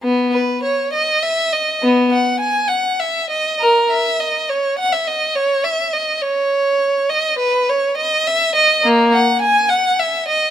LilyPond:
\new Staff \with { instrumentName = "Violin" } { \time 12/8 \key dis \phrygian \tempo 4. = 68 b8 b'8 cis''8 dis''8 e''8 dis''8 b8 fis''8 gis''8 fis''8 e''8 dis''8 | ais'8 e''8 dis''8 cis''8 fis''16 e''16 dis''8 cis''8 e''8 dis''8 cis''4. | dis''8 b'8 cis''8 dis''8 e''8 dis''8 ais8 fis''8 gis''8 fis''8 e''8 dis''8 | }